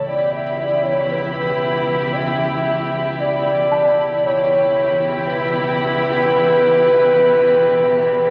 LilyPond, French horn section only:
\new Staff \with { instrumentName = "French horn section" } { \time 4/4 \key e \major \tempo 4 = 58 d''16 e''16 d''16 cis''16 b'4 e''4 d''4 | cis''4 b'2. | }